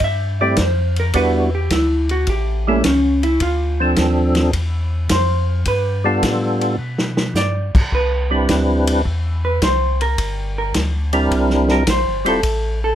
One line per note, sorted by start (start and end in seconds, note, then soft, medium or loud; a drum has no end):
0.00 0.56 G2 medium
0.00 kick soft
0.00 ride medium
0.04 0.41 E5 medium
0.41 0.57 G3 medium
0.41 0.57 A3 medium
0.41 0.57 C4 medium
0.41 0.57 E4 medium
0.41 0.57 G4 medium
0.41 0.58 D5 medium
0.57 1.13 F2 medium
0.57 kick soft
0.57 snare medium
0.57 hi-hat pedal medium
0.57 ride medium
0.61 0.97 C5 medium
0.96 1.16 A#4 medium
0.96 ride soft
1.13 1.69 E2 medium
1.13 1.50 G3 medium
1.13 1.50 B3 medium
1.13 1.50 D4 medium
1.13 1.50 E4 medium
1.13 1.50 F#4 medium
1.13 1.54 B4 loud
1.13 kick soft
1.13 ride medium
1.55 1.71 G4 medium
1.70 2.26 D2 medium
1.70 2.10 E4 medium
1.70 kick soft
1.70 snare medium
1.70 hi-hat pedal soft
1.70 ride medium
2.09 2.28 F#4 medium
2.09 ride soft
2.27 2.82 A1 medium
2.27 2.67 G4 medium
2.27 kick soft
2.27 ride medium
2.67 2.83 G3 medium
2.67 2.83 A3 medium
2.67 2.84 A#3 medium
2.67 2.84 C#4 medium
2.67 2.84 E4 medium
2.67 2.84 A4 medium
2.84 3.39 C#2 medium
2.84 3.22 C#4 medium
2.84 kick soft
2.84 snare medium
2.84 hi-hat pedal medium
2.84 ride medium
3.23 3.41 E4 medium
3.23 ride soft
3.40 3.96 D2 medium
3.40 4.33 F4 medium
3.40 kick soft
3.40 ride medium
3.80 4.51 F3 medium
3.80 4.51 C4 medium
3.80 4.51 D4 medium
3.80 4.51 A4 medium
3.96 4.52 D#2 medium
3.96 kick soft
3.96 snare medium
3.96 hi-hat pedal soft
3.96 ride medium
4.35 snare soft
4.35 ride soft
4.53 5.08 E2 medium
4.53 kick soft
4.53 ride medium
5.09 5.65 F2 medium
5.09 5.64 C5 medium
5.09 kick soft
5.09 snare medium
5.09 hi-hat pedal medium
5.09 ride medium
5.65 6.21 G2 medium
5.65 6.20 B4 medium
5.65 kick soft
5.65 ride medium
6.04 6.76 G3 medium
6.04 6.76 B3 medium
6.04 6.76 D4 medium
6.04 6.76 F4 medium
6.04 6.76 A4 medium
6.22 6.78 A2 medium
6.22 kick soft
6.22 snare medium
6.22 hi-hat pedal medium
6.22 ride medium
6.61 ride soft
6.79 7.34 B2 medium
6.98 snare medium
7.17 snare medium
7.34 7.71 G2 medium
7.34 7.89 D5 medium
7.34 snare medium
7.34 hi-hat pedal medium
7.74 7.83 G2 soft
7.74 kick medium
7.74 crash medium
7.92 8.47 C2 medium
7.92 8.46 B4 medium
7.92 kick soft
8.31 9.01 G3 medium
8.31 9.02 C4 medium
8.31 9.02 D4 medium
8.31 9.02 E4 medium
8.31 9.02 B4 medium
8.49 9.04 D2 medium
8.49 kick soft
8.49 snare medium
8.49 hi-hat pedal soft
8.49 ride medium
8.87 ride medium
9.05 9.60 E2 medium
9.05 kick soft
9.45 9.61 B4 medium
9.62 10.16 C2 medium
9.62 10.00 C5 medium
9.62 kick soft
9.62 snare medium
9.62 hi-hat pedal medium
9.62 ride medium
10.01 10.54 A#4 medium
10.01 ride soft
10.18 10.73 G1 medium
10.18 kick soft
10.18 ride medium
10.58 10.75 A#4 medium
10.74 11.29 D2 medium
10.74 kick soft
10.74 snare medium
10.74 hi-hat pedal soft
10.74 ride medium
11.13 11.83 G3 medium
11.13 11.83 C4 medium
11.13 11.83 D4 medium
11.13 11.84 E4 medium
11.13 11.84 A#4 medium
11.13 ride soft
11.31 11.85 C2 medium
11.31 kick soft
11.31 ride medium
11.50 snare soft
11.68 11.87 A#4 medium
11.68 snare soft
11.87 12.05 A#1 medium
11.87 12.26 C5 medium
11.87 kick soft
11.87 snare medium
11.87 hi-hat pedal medium
11.87 ride medium
12.06 12.25 G1 medium
12.25 12.42 E1 medium
12.25 12.41 G3 medium
12.25 12.41 C4 medium
12.25 12.41 E4 medium
12.25 12.42 F4 medium
12.25 12.79 A4 medium
12.25 12.42 C5 medium
12.25 ride medium
12.43 12.95 A1 medium
12.43 kick soft
12.43 ride medium
12.84 12.95 A4 medium